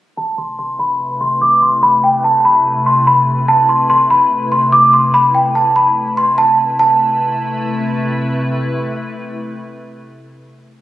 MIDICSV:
0, 0, Header, 1, 3, 480
1, 0, Start_track
1, 0, Key_signature, 0, "minor"
1, 0, Tempo, 413793
1, 201, Time_signature, 4, 2, 24, 8
1, 12545, End_track
2, 0, Start_track
2, 0, Title_t, "Celesta"
2, 0, Program_c, 0, 8
2, 201, Note_on_c, 0, 81, 98
2, 409, Note_off_c, 0, 81, 0
2, 441, Note_on_c, 0, 84, 76
2, 649, Note_off_c, 0, 84, 0
2, 681, Note_on_c, 0, 84, 74
2, 889, Note_off_c, 0, 84, 0
2, 920, Note_on_c, 0, 83, 80
2, 1372, Note_off_c, 0, 83, 0
2, 1401, Note_on_c, 0, 84, 77
2, 1609, Note_off_c, 0, 84, 0
2, 1642, Note_on_c, 0, 86, 82
2, 1849, Note_off_c, 0, 86, 0
2, 1882, Note_on_c, 0, 84, 72
2, 2089, Note_off_c, 0, 84, 0
2, 2120, Note_on_c, 0, 83, 100
2, 2328, Note_off_c, 0, 83, 0
2, 2362, Note_on_c, 0, 79, 77
2, 2569, Note_off_c, 0, 79, 0
2, 2601, Note_on_c, 0, 81, 77
2, 2809, Note_off_c, 0, 81, 0
2, 2841, Note_on_c, 0, 83, 80
2, 3292, Note_off_c, 0, 83, 0
2, 3321, Note_on_c, 0, 84, 82
2, 3529, Note_off_c, 0, 84, 0
2, 3561, Note_on_c, 0, 83, 90
2, 4012, Note_off_c, 0, 83, 0
2, 4041, Note_on_c, 0, 81, 96
2, 4249, Note_off_c, 0, 81, 0
2, 4282, Note_on_c, 0, 84, 74
2, 4489, Note_off_c, 0, 84, 0
2, 4521, Note_on_c, 0, 84, 98
2, 4729, Note_off_c, 0, 84, 0
2, 4760, Note_on_c, 0, 83, 80
2, 5212, Note_off_c, 0, 83, 0
2, 5240, Note_on_c, 0, 84, 73
2, 5448, Note_off_c, 0, 84, 0
2, 5480, Note_on_c, 0, 86, 86
2, 5688, Note_off_c, 0, 86, 0
2, 5722, Note_on_c, 0, 84, 81
2, 5929, Note_off_c, 0, 84, 0
2, 5961, Note_on_c, 0, 83, 99
2, 6169, Note_off_c, 0, 83, 0
2, 6201, Note_on_c, 0, 79, 81
2, 6409, Note_off_c, 0, 79, 0
2, 6441, Note_on_c, 0, 81, 83
2, 6649, Note_off_c, 0, 81, 0
2, 6680, Note_on_c, 0, 83, 82
2, 7132, Note_off_c, 0, 83, 0
2, 7161, Note_on_c, 0, 84, 74
2, 7369, Note_off_c, 0, 84, 0
2, 7400, Note_on_c, 0, 81, 82
2, 7608, Note_off_c, 0, 81, 0
2, 7882, Note_on_c, 0, 81, 79
2, 9275, Note_off_c, 0, 81, 0
2, 12545, End_track
3, 0, Start_track
3, 0, Title_t, "Ambient pad"
3, 0, Program_c, 1, 92
3, 201, Note_on_c, 1, 48, 83
3, 201, Note_on_c, 1, 57, 76
3, 201, Note_on_c, 1, 64, 74
3, 201, Note_on_c, 1, 71, 88
3, 7835, Note_off_c, 1, 48, 0
3, 7835, Note_off_c, 1, 57, 0
3, 7835, Note_off_c, 1, 64, 0
3, 7835, Note_off_c, 1, 71, 0
3, 7881, Note_on_c, 1, 48, 82
3, 7881, Note_on_c, 1, 64, 76
3, 7882, Note_on_c, 1, 57, 73
3, 7882, Note_on_c, 1, 71, 91
3, 11746, Note_off_c, 1, 48, 0
3, 11746, Note_off_c, 1, 57, 0
3, 11746, Note_off_c, 1, 64, 0
3, 11746, Note_off_c, 1, 71, 0
3, 12545, End_track
0, 0, End_of_file